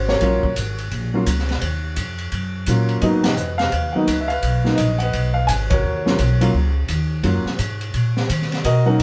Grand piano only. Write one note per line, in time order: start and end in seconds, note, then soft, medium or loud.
0.00 0.18 C#4 medium
0.09 0.75 F#4 medium
0.09 0.75 A#4 medium
0.09 0.53 C#5 medium
0.21 0.41 F#3 medium
0.21 0.41 A#3 medium
0.21 0.42 C#4 medium
0.21 0.42 F4 medium
1.14 1.25 F#3 medium
1.14 1.26 A#3 medium
1.14 1.26 C#4 medium
1.14 1.26 F4 medium
2.68 3.01 F#3 medium
2.68 3.02 A#3 medium
2.68 3.03 C#4 medium
2.68 3.03 F4 medium
3.02 3.22 F#3 medium
3.02 3.22 A#3 medium
3.02 3.23 B3 medium
3.02 3.23 D#4 medium
3.02 3.69 F#4 medium
3.02 3.24 B4 medium
3.02 3.07 D#5 medium
3.24 3.59 B4 medium
3.24 3.91 D#5 medium
3.24 3.57 F#5 medium
3.58 3.94 B4 medium
3.58 3.95 F5 loud
3.92 4.07 F#3 medium
3.92 4.07 A#3 medium
3.92 4.07 B3 medium
3.92 4.07 D#4 medium
3.92 4.30 B4 medium
3.92 4.61 D#5 medium
3.92 4.18 F#5 medium
4.21 4.30 E5 medium
4.28 4.97 B4 medium
4.28 4.78 F5 medium
4.64 4.76 F#3 medium
4.64 4.77 A#3 medium
4.64 4.77 B3 medium
4.64 4.77 D#4 medium
4.75 4.97 D#5 medium
4.99 5.67 D#5 medium
4.99 5.32 F#5 loud
5.03 5.68 B4 medium
5.34 5.46 F5 medium
5.47 5.52 G#5 medium
5.70 6.38 F#4 medium
5.70 6.38 A#4 medium
5.70 6.36 C#5 medium
6.06 6.17 F#3 medium
6.06 6.17 A#3 medium
6.06 6.18 C#4 medium
6.06 6.18 F4 medium
6.41 6.52 F#3 medium
6.41 6.53 A#3 medium
6.41 6.53 C#4 medium
6.41 6.53 F4 medium
7.23 7.43 F#3 medium
7.23 7.44 A#3 medium
7.23 7.44 C#4 medium
7.23 7.44 F4 medium
8.65 9.03 F#4 medium
8.65 8.86 A#4 medium
8.65 8.85 D#5 medium
8.86 9.03 F#3 medium
8.86 9.03 A#3 medium
8.86 9.03 C#4 medium
8.86 9.03 D#4 medium
8.86 9.03 A#4 medium
8.86 9.03 D#5 medium
8.86 9.03 F#5 medium